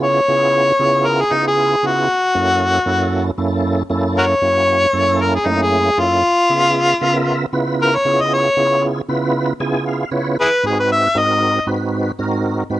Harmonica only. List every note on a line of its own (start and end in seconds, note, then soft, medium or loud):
0.03 1.08 C#5 loud
1.07 1.23 A#4 medium
1.22 1.34 G#4 medium
1.33 1.45 D#4 medium
1.48 1.88 G#4 medium
1.86 3.36 F#4 medium
4.18 4.25 F#4 medium
4.18 4.25 A#4 medium
4.18 5.23 C#5 loud
5.22 5.34 A#4 medium
5.35 5.49 G#4 medium
5.48 5.63 D#4 medium
5.62 6.01 G#4 loud
5.99 7.50 F4 loud
7.82 7.97 A#4 loud
7.95 8.23 C#5 medium
8.21 8.35 D#5 medium
8.34 8.82 C#5 loud
10.41 10.50 E4 medium
10.41 10.47 G#4 medium
10.41 10.64 B4 loud
10.67 10.78 G#4 medium
10.80 10.90 B4 medium
10.92 11.20 E5 medium
11.18 11.67 D#5 medium